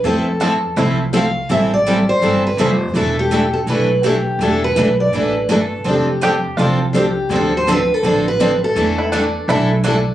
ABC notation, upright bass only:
X:1
M:4/4
L:1/8
Q:"Swing" 1/4=165
K:Ephr
V:1 name="Upright bass" clef=bass
F,,4 C,,4 | A,,,4 G,,,2 F,,,2 | E,,,4 B,,,4 | E,,,2 B,,,2 A,,,2 G,,,2 |
F,,,4 C,,4 | D,,4 A,,,4 | E,,4 B,,,4 |]